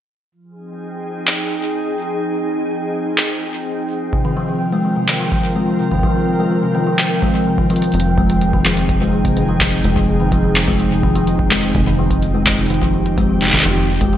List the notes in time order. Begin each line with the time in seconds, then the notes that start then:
0.32 F3
0.44 G#4
0.52 D#4
0.57 C4
0.66 G5
1.27 clap
3.18 clap
4.13 C3, kick
4.20 F4
4.25 D#3
4.37 F3
4.49 F3
4.61 A#4
4.73 G#3
4.84 F3
4.96 C3
5.08 D#3, clap
5.20 F3
5.32 F3, kick
5.56 G#3
5.68 F3
5.80 C3
5.91 D#3, kick
5.95 kick
5.99 kick
6.03 F3, kick
6.15 F3
6.39 G#3
6.51 F3
6.63 C3
6.75 D#3
6.87 F3
6.99 F3, clap
7.22 G#3, kick
7.34 F3
7.46 C3
7.58 D#3, kick
7.70 F3, closed hi-hat
7.76 closed hi-hat
7.82 F3, closed hi-hat
7.84 closed hi-hat
7.92 closed hi-hat
7.94 F1 F3, closed hi-hat
8.00 closed hi-hat
8.05 G#4
8.18 G#3, kick
8.30 F3 D#4, closed hi-hat
8.41 C3, closed hi-hat
8.53 D#3, kick
8.65 F3, clap
8.77 F3, closed hi-hat
8.89 kick, closed hi-hat
9.01 G#3
9.13 F3
9.25 C3, kick, closed hi-hat
9.37 D#3, closed hi-hat
9.49 F3
9.61 F3, kick, clap
9.73 closed hi-hat
9.84 F1 G#3, closed hi-hat
9.96 F3, kick
10.08 C3
10.20 D#3
10.32 F3, kick, closed hi-hat
10.44 F3
10.56 clap
10.68 G#3, kick, closed hi-hat
10.80 F3, closed hi-hat
10.91 C3
11.03 D#3, kick
11.15 F3, closed hi-hat
11.27 F3, closed hi-hat
11.39 kick
11.51 G#3, clap
11.63 F3, closed hi-hat
11.75 F1 C3, kick, closed hi-hat
11.87 D#3
11.99 F3
12.11 F3, kick, closed hi-hat
12.22 closed hi-hat
12.34 G#3 G4
12.46 F3, kick, clap
12.58 C3, closed hi-hat
12.66 D#3, closed hi-hat
12.70 closed hi-hat
12.74 closed hi-hat
12.82 F3, kick
12.94 F3
13.06 closed hi-hat
13.18 G#3, kick, closed hi-hat
13.30 F3
13.42 C3, clap
13.45 clap
13.47 clap
13.50 D#3, kick, clap
13.53 clap, closed hi-hat
13.56 clap
13.59 clap
13.62 F1 F3, clap, closed hi-hat
13.77 F3
14.01 G#3, kick, closed hi-hat
14.13 F3, closed hi-hat